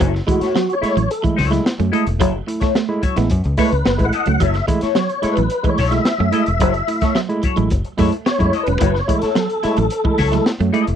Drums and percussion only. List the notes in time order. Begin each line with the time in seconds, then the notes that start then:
0.00 kick, closed hi-hat
0.15 snare
0.28 kick, closed hi-hat
0.41 snare, closed hi-hat
0.55 snare
0.70 closed hi-hat
0.83 snare, closed hi-hat
0.97 closed hi-hat
1.11 closed hi-hat
1.24 kick, closed hi-hat
1.38 kick, snare, open hi-hat
1.52 snare, closed hi-hat
1.66 snare
1.80 closed hi-hat
1.93 closed hi-hat
2.07 closed hi-hat
2.21 kick, closed hi-hat
2.48 closed hi-hat
2.61 kick, snare, closed hi-hat
2.75 snare
3.03 kick, closed hi-hat
3.17 snare, closed hi-hat
3.30 kick, closed hi-hat
3.44 closed hi-hat
3.57 kick, snare, open hi-hat
3.72 closed hi-hat
3.86 snare
3.99 kick, closed hi-hat
4.13 closed hi-hat
4.26 closed hi-hat
4.40 kick, closed hi-hat
4.54 snare, closed hi-hat
4.68 kick, closed hi-hat
4.81 snare, closed hi-hat
4.95 snare
5.09 closed hi-hat
5.23 snare, closed hi-hat
5.37 closed hi-hat
5.50 closed hi-hat
5.64 kick, closed hi-hat
5.78 kick, snare, open hi-hat
5.91 snare, closed hi-hat
6.05 snare
6.32 closed hi-hat
6.46 closed hi-hat
6.60 kick, closed hi-hat
6.74 closed hi-hat
6.88 closed hi-hat
7.01 kick, snare, closed hi-hat
7.15 snare
7.29 closed hi-hat
7.43 kick, closed hi-hat
7.57 closed hi-hat
7.70 kick, closed hi-hat
7.85 closed hi-hat
7.98 kick, snare, open hi-hat
8.12 closed hi-hat
8.26 snare
8.40 kick, closed hi-hat
8.53 closed hi-hat
8.66 closed hi-hat
8.81 kick, closed hi-hat
8.95 snare
9.09 kick, closed hi-hat
9.22 snare, closed hi-hat
9.35 snare
9.50 closed hi-hat
9.63 snare, closed hi-hat
9.77 closed hi-hat
9.90 closed hi-hat
10.05 kick
10.18 kick, snare, open hi-hat
10.32 snare, closed hi-hat
10.46 snare
10.60 closed hi-hat
10.74 closed hi-hat
10.87 closed hi-hat